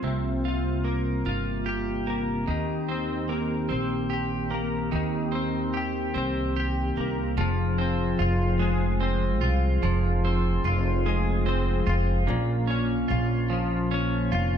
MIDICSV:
0, 0, Header, 1, 4, 480
1, 0, Start_track
1, 0, Key_signature, -4, "minor"
1, 0, Tempo, 817439
1, 17, Time_signature, 6, 3, 24, 8
1, 8559, End_track
2, 0, Start_track
2, 0, Title_t, "Clean electric guitar"
2, 0, Program_c, 0, 27
2, 0, Note_on_c, 0, 53, 68
2, 0, Note_on_c, 0, 60, 50
2, 0, Note_on_c, 0, 65, 56
2, 0, Note_on_c, 0, 68, 61
2, 22, Note_on_c, 0, 48, 70
2, 67, Note_off_c, 0, 68, 0
2, 262, Note_off_c, 0, 65, 0
2, 264, Note_on_c, 0, 65, 56
2, 493, Note_off_c, 0, 60, 0
2, 496, Note_on_c, 0, 58, 53
2, 631, Note_off_c, 0, 53, 0
2, 733, Note_off_c, 0, 65, 0
2, 740, Note_on_c, 0, 65, 58
2, 974, Note_on_c, 0, 67, 65
2, 1214, Note_off_c, 0, 58, 0
2, 1216, Note_on_c, 0, 58, 55
2, 1454, Note_on_c, 0, 51, 76
2, 1458, Note_off_c, 0, 48, 0
2, 1506, Note_off_c, 0, 65, 0
2, 1694, Note_on_c, 0, 60, 58
2, 1712, Note_off_c, 0, 58, 0
2, 1932, Note_on_c, 0, 58, 58
2, 2163, Note_off_c, 0, 60, 0
2, 2166, Note_on_c, 0, 60, 61
2, 2404, Note_off_c, 0, 67, 0
2, 2407, Note_on_c, 0, 67, 64
2, 2644, Note_off_c, 0, 58, 0
2, 2647, Note_on_c, 0, 58, 58
2, 2887, Note_off_c, 0, 51, 0
2, 2889, Note_on_c, 0, 51, 74
2, 3121, Note_off_c, 0, 60, 0
2, 3123, Note_on_c, 0, 60, 55
2, 3141, Note_off_c, 0, 58, 0
2, 3366, Note_off_c, 0, 67, 0
2, 3369, Note_on_c, 0, 67, 63
2, 3605, Note_off_c, 0, 60, 0
2, 3607, Note_on_c, 0, 60, 64
2, 3848, Note_off_c, 0, 67, 0
2, 3855, Note_on_c, 0, 67, 66
2, 4095, Note_on_c, 0, 58, 52
2, 4330, Note_off_c, 0, 51, 0
2, 4332, Note_on_c, 0, 53, 84
2, 4382, Note_off_c, 0, 58, 0
2, 4382, Note_off_c, 0, 67, 0
2, 4568, Note_off_c, 0, 60, 0
2, 4570, Note_on_c, 0, 60, 62
2, 4809, Note_on_c, 0, 65, 70
2, 5046, Note_on_c, 0, 56, 72
2, 5281, Note_off_c, 0, 60, 0
2, 5288, Note_on_c, 0, 60, 62
2, 5524, Note_off_c, 0, 65, 0
2, 5527, Note_on_c, 0, 65, 69
2, 5769, Note_off_c, 0, 53, 0
2, 5771, Note_on_c, 0, 53, 86
2, 6010, Note_off_c, 0, 60, 0
2, 6017, Note_on_c, 0, 60, 67
2, 6252, Note_off_c, 0, 65, 0
2, 6255, Note_on_c, 0, 65, 67
2, 6489, Note_off_c, 0, 56, 0
2, 6495, Note_on_c, 0, 56, 73
2, 6722, Note_off_c, 0, 60, 0
2, 6730, Note_on_c, 0, 60, 66
2, 6965, Note_off_c, 0, 65, 0
2, 6968, Note_on_c, 0, 65, 71
2, 7205, Note_on_c, 0, 46, 90
2, 7259, Note_off_c, 0, 60, 0
2, 7262, Note_off_c, 0, 56, 0
2, 7442, Note_on_c, 0, 61, 67
2, 7680, Note_off_c, 0, 65, 0
2, 7682, Note_on_c, 0, 65, 74
2, 7826, Note_off_c, 0, 53, 0
2, 7926, Note_on_c, 0, 53, 71
2, 8163, Note_off_c, 0, 61, 0
2, 8170, Note_on_c, 0, 61, 69
2, 8401, Note_off_c, 0, 65, 0
2, 8408, Note_on_c, 0, 65, 71
2, 8559, Note_off_c, 0, 46, 0
2, 8559, Note_off_c, 0, 53, 0
2, 8559, Note_off_c, 0, 61, 0
2, 8559, Note_off_c, 0, 65, 0
2, 8559, End_track
3, 0, Start_track
3, 0, Title_t, "Tonewheel organ"
3, 0, Program_c, 1, 16
3, 0, Note_on_c, 1, 65, 56
3, 14, Note_on_c, 1, 58, 52
3, 16, Note_on_c, 1, 48, 56
3, 17, Note_on_c, 1, 55, 48
3, 1436, Note_off_c, 1, 65, 0
3, 1440, Note_off_c, 1, 58, 0
3, 1441, Note_off_c, 1, 48, 0
3, 1441, Note_off_c, 1, 55, 0
3, 1451, Note_on_c, 1, 58, 57
3, 1451, Note_on_c, 1, 60, 50
3, 1452, Note_on_c, 1, 51, 56
3, 1452, Note_on_c, 1, 67, 69
3, 2877, Note_off_c, 1, 58, 0
3, 2877, Note_off_c, 1, 60, 0
3, 2879, Note_off_c, 1, 51, 0
3, 2879, Note_off_c, 1, 67, 0
3, 2884, Note_on_c, 1, 58, 49
3, 2884, Note_on_c, 1, 60, 52
3, 2886, Note_on_c, 1, 67, 66
3, 2888, Note_on_c, 1, 51, 57
3, 4314, Note_off_c, 1, 58, 0
3, 4314, Note_off_c, 1, 60, 0
3, 4315, Note_off_c, 1, 67, 0
3, 4316, Note_off_c, 1, 51, 0
3, 4329, Note_on_c, 1, 53, 64
3, 4332, Note_on_c, 1, 72, 68
3, 4334, Note_on_c, 1, 65, 61
3, 4335, Note_on_c, 1, 68, 57
3, 7187, Note_off_c, 1, 53, 0
3, 7188, Note_off_c, 1, 72, 0
3, 7189, Note_off_c, 1, 68, 0
3, 7203, Note_on_c, 1, 58, 70
3, 7206, Note_on_c, 1, 61, 65
3, 8559, Note_off_c, 1, 58, 0
3, 8559, Note_off_c, 1, 61, 0
3, 8559, Note_off_c, 1, 65, 0
3, 8559, End_track
4, 0, Start_track
4, 0, Title_t, "Upright bass"
4, 0, Program_c, 2, 32
4, 16, Note_on_c, 2, 36, 79
4, 712, Note_off_c, 2, 36, 0
4, 734, Note_on_c, 2, 31, 81
4, 1431, Note_off_c, 2, 31, 0
4, 1454, Note_on_c, 2, 39, 83
4, 2151, Note_off_c, 2, 39, 0
4, 2176, Note_on_c, 2, 34, 83
4, 2872, Note_off_c, 2, 34, 0
4, 2894, Note_on_c, 2, 39, 81
4, 3590, Note_off_c, 2, 39, 0
4, 3614, Note_on_c, 2, 36, 85
4, 4070, Note_off_c, 2, 36, 0
4, 4093, Note_on_c, 2, 36, 78
4, 4319, Note_off_c, 2, 36, 0
4, 4330, Note_on_c, 2, 29, 98
4, 4788, Note_off_c, 2, 29, 0
4, 4816, Note_on_c, 2, 29, 94
4, 5533, Note_off_c, 2, 29, 0
4, 5533, Note_on_c, 2, 36, 90
4, 5759, Note_off_c, 2, 36, 0
4, 5772, Note_on_c, 2, 29, 104
4, 6229, Note_off_c, 2, 29, 0
4, 6248, Note_on_c, 2, 29, 97
4, 6947, Note_off_c, 2, 29, 0
4, 6970, Note_on_c, 2, 29, 96
4, 7197, Note_off_c, 2, 29, 0
4, 7213, Note_on_c, 2, 34, 114
4, 7669, Note_off_c, 2, 34, 0
4, 7694, Note_on_c, 2, 34, 92
4, 8390, Note_off_c, 2, 34, 0
4, 8412, Note_on_c, 2, 29, 93
4, 8559, Note_off_c, 2, 29, 0
4, 8559, End_track
0, 0, End_of_file